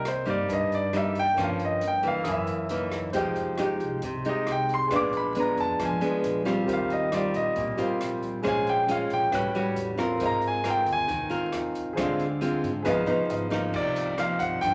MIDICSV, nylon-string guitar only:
0, 0, Header, 1, 2, 480
1, 0, Start_track
1, 0, Key_signature, -3, "minor"
1, 0, Tempo, 441826
1, 1492, Time_signature, 4, 2, 24, 8
1, 16017, End_track
2, 0, Start_track
2, 0, Title_t, "Nylon-string guitar"
2, 0, Program_c, 0, 24
2, 0, Note_on_c, 0, 48, 52
2, 276, Note_on_c, 0, 55, 61
2, 283, Note_on_c, 0, 58, 59
2, 287, Note_on_c, 0, 63, 63
2, 504, Note_off_c, 0, 48, 0
2, 527, Note_on_c, 0, 43, 56
2, 968, Note_off_c, 0, 55, 0
2, 968, Note_off_c, 0, 58, 0
2, 971, Note_off_c, 0, 63, 0
2, 1009, Note_on_c, 0, 55, 53
2, 1014, Note_on_c, 0, 58, 49
2, 1021, Note_on_c, 0, 63, 61
2, 1320, Note_off_c, 0, 55, 0
2, 1320, Note_off_c, 0, 58, 0
2, 1326, Note_off_c, 0, 63, 0
2, 1467, Note_off_c, 0, 43, 0
2, 1487, Note_on_c, 0, 53, 54
2, 1493, Note_on_c, 0, 43, 53
2, 1497, Note_on_c, 0, 58, 51
2, 1499, Note_on_c, 0, 61, 59
2, 1967, Note_off_c, 0, 53, 0
2, 1970, Note_off_c, 0, 58, 0
2, 1973, Note_off_c, 0, 61, 0
2, 2203, Note_on_c, 0, 52, 62
2, 2209, Note_on_c, 0, 58, 61
2, 2430, Note_off_c, 0, 43, 0
2, 2450, Note_on_c, 0, 42, 59
2, 2890, Note_off_c, 0, 52, 0
2, 2893, Note_off_c, 0, 58, 0
2, 2933, Note_on_c, 0, 52, 54
2, 2937, Note_on_c, 0, 58, 51
2, 2940, Note_on_c, 0, 63, 62
2, 3376, Note_off_c, 0, 52, 0
2, 3377, Note_off_c, 0, 58, 0
2, 3379, Note_off_c, 0, 63, 0
2, 3389, Note_off_c, 0, 42, 0
2, 3408, Note_on_c, 0, 53, 55
2, 3412, Note_on_c, 0, 56, 55
2, 3413, Note_on_c, 0, 63, 58
2, 3417, Note_on_c, 0, 67, 59
2, 3854, Note_off_c, 0, 63, 0
2, 3855, Note_off_c, 0, 56, 0
2, 3858, Note_off_c, 0, 67, 0
2, 3892, Note_on_c, 0, 56, 55
2, 3900, Note_on_c, 0, 63, 58
2, 3905, Note_on_c, 0, 67, 66
2, 4348, Note_off_c, 0, 53, 0
2, 4370, Note_off_c, 0, 56, 0
2, 4374, Note_off_c, 0, 63, 0
2, 4375, Note_off_c, 0, 67, 0
2, 4384, Note_on_c, 0, 48, 59
2, 4620, Note_on_c, 0, 56, 62
2, 4625, Note_on_c, 0, 63, 62
2, 4630, Note_on_c, 0, 67, 64
2, 5299, Note_off_c, 0, 56, 0
2, 5300, Note_off_c, 0, 63, 0
2, 5304, Note_off_c, 0, 67, 0
2, 5315, Note_off_c, 0, 48, 0
2, 5332, Note_on_c, 0, 46, 57
2, 5335, Note_on_c, 0, 56, 50
2, 5339, Note_on_c, 0, 59, 55
2, 5343, Note_on_c, 0, 62, 67
2, 5776, Note_off_c, 0, 56, 0
2, 5778, Note_off_c, 0, 59, 0
2, 5780, Note_off_c, 0, 62, 0
2, 5814, Note_on_c, 0, 56, 51
2, 5820, Note_on_c, 0, 59, 60
2, 5827, Note_on_c, 0, 62, 60
2, 6269, Note_off_c, 0, 46, 0
2, 6298, Note_on_c, 0, 53, 56
2, 6496, Note_off_c, 0, 56, 0
2, 6497, Note_off_c, 0, 59, 0
2, 6502, Note_off_c, 0, 62, 0
2, 6530, Note_on_c, 0, 56, 61
2, 6531, Note_on_c, 0, 59, 57
2, 6537, Note_on_c, 0, 62, 63
2, 6973, Note_off_c, 0, 56, 0
2, 6973, Note_off_c, 0, 59, 0
2, 6977, Note_off_c, 0, 62, 0
2, 7010, Note_on_c, 0, 55, 62
2, 7015, Note_on_c, 0, 60, 53
2, 7017, Note_on_c, 0, 65, 67
2, 7231, Note_off_c, 0, 53, 0
2, 7253, Note_on_c, 0, 51, 56
2, 7693, Note_off_c, 0, 55, 0
2, 7694, Note_off_c, 0, 60, 0
2, 7694, Note_off_c, 0, 65, 0
2, 7738, Note_on_c, 0, 55, 53
2, 7743, Note_on_c, 0, 60, 50
2, 7748, Note_on_c, 0, 65, 59
2, 8188, Note_off_c, 0, 51, 0
2, 8213, Note_on_c, 0, 46, 57
2, 8416, Note_off_c, 0, 55, 0
2, 8419, Note_off_c, 0, 60, 0
2, 8420, Note_off_c, 0, 65, 0
2, 8446, Note_on_c, 0, 55, 64
2, 8451, Note_on_c, 0, 60, 55
2, 8456, Note_on_c, 0, 65, 69
2, 9129, Note_off_c, 0, 55, 0
2, 9132, Note_off_c, 0, 60, 0
2, 9133, Note_off_c, 0, 65, 0
2, 9143, Note_off_c, 0, 46, 0
2, 9155, Note_on_c, 0, 46, 53
2, 9162, Note_on_c, 0, 56, 56
2, 9162, Note_on_c, 0, 61, 56
2, 9166, Note_on_c, 0, 65, 64
2, 9606, Note_off_c, 0, 56, 0
2, 9608, Note_off_c, 0, 61, 0
2, 9608, Note_off_c, 0, 65, 0
2, 9650, Note_on_c, 0, 56, 56
2, 9656, Note_on_c, 0, 61, 57
2, 9657, Note_on_c, 0, 65, 66
2, 10098, Note_off_c, 0, 46, 0
2, 10110, Note_off_c, 0, 56, 0
2, 10112, Note_off_c, 0, 61, 0
2, 10114, Note_off_c, 0, 65, 0
2, 10126, Note_on_c, 0, 45, 59
2, 10128, Note_on_c, 0, 55, 55
2, 10133, Note_on_c, 0, 61, 58
2, 10134, Note_on_c, 0, 66, 64
2, 10269, Note_off_c, 0, 55, 0
2, 10272, Note_off_c, 0, 61, 0
2, 10272, Note_off_c, 0, 66, 0
2, 10374, Note_on_c, 0, 55, 60
2, 10381, Note_on_c, 0, 61, 60
2, 10388, Note_on_c, 0, 66, 70
2, 10814, Note_off_c, 0, 55, 0
2, 10814, Note_off_c, 0, 61, 0
2, 10816, Note_off_c, 0, 66, 0
2, 10837, Note_on_c, 0, 60, 68
2, 10845, Note_on_c, 0, 65, 68
2, 10849, Note_on_c, 0, 70, 71
2, 11063, Note_off_c, 0, 45, 0
2, 11097, Note_on_c, 0, 56, 56
2, 11524, Note_off_c, 0, 60, 0
2, 11526, Note_off_c, 0, 65, 0
2, 11529, Note_off_c, 0, 70, 0
2, 11566, Note_on_c, 0, 60, 64
2, 11570, Note_on_c, 0, 65, 61
2, 11571, Note_on_c, 0, 70, 70
2, 12027, Note_off_c, 0, 56, 0
2, 12034, Note_on_c, 0, 51, 61
2, 12043, Note_off_c, 0, 60, 0
2, 12044, Note_off_c, 0, 65, 0
2, 12046, Note_off_c, 0, 70, 0
2, 12271, Note_on_c, 0, 60, 60
2, 12277, Note_on_c, 0, 65, 61
2, 12286, Note_on_c, 0, 70, 71
2, 12959, Note_off_c, 0, 60, 0
2, 12962, Note_off_c, 0, 65, 0
2, 12967, Note_off_c, 0, 70, 0
2, 12975, Note_off_c, 0, 51, 0
2, 13005, Note_on_c, 0, 50, 58
2, 13009, Note_on_c, 0, 56, 56
2, 13010, Note_on_c, 0, 60, 59
2, 13015, Note_on_c, 0, 65, 63
2, 13315, Note_off_c, 0, 56, 0
2, 13316, Note_off_c, 0, 60, 0
2, 13319, Note_off_c, 0, 65, 0
2, 13482, Note_on_c, 0, 56, 63
2, 13487, Note_on_c, 0, 60, 61
2, 13493, Note_on_c, 0, 65, 65
2, 13806, Note_off_c, 0, 56, 0
2, 13809, Note_off_c, 0, 60, 0
2, 13811, Note_off_c, 0, 65, 0
2, 13941, Note_off_c, 0, 50, 0
2, 13956, Note_on_c, 0, 49, 64
2, 13957, Note_on_c, 0, 53, 61
2, 13961, Note_on_c, 0, 59, 61
2, 13968, Note_on_c, 0, 63, 60
2, 14162, Note_off_c, 0, 53, 0
2, 14165, Note_off_c, 0, 59, 0
2, 14167, Note_off_c, 0, 63, 0
2, 14191, Note_on_c, 0, 53, 66
2, 14199, Note_on_c, 0, 63, 70
2, 14200, Note_on_c, 0, 59, 62
2, 14640, Note_off_c, 0, 53, 0
2, 14642, Note_off_c, 0, 59, 0
2, 14644, Note_off_c, 0, 63, 0
2, 14670, Note_on_c, 0, 53, 64
2, 14678, Note_on_c, 0, 63, 80
2, 14679, Note_on_c, 0, 58, 68
2, 14898, Note_off_c, 0, 49, 0
2, 14915, Note_on_c, 0, 48, 52
2, 15360, Note_off_c, 0, 53, 0
2, 15362, Note_off_c, 0, 58, 0
2, 15364, Note_off_c, 0, 63, 0
2, 15400, Note_on_c, 0, 53, 54
2, 15405, Note_on_c, 0, 58, 54
2, 15411, Note_on_c, 0, 63, 56
2, 15857, Note_off_c, 0, 48, 0
2, 15884, Note_on_c, 0, 43, 54
2, 16017, Note_off_c, 0, 43, 0
2, 16017, Note_off_c, 0, 53, 0
2, 16017, Note_off_c, 0, 58, 0
2, 16017, Note_off_c, 0, 63, 0
2, 16017, End_track
0, 0, End_of_file